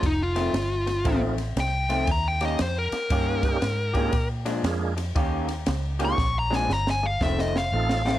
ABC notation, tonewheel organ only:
X:1
M:4/4
L:1/8
Q:"Swing" 1/4=117
K:Eb
V:1 name="Tonewheel organ"
z4 [F,=A,CEF] z3 | z4 z [G,B,_DEG] z [A,B,=DFA] | z2 [A,B,DFA] z4 [A,B,DFG] | z6 [=A,CEF=A] z |]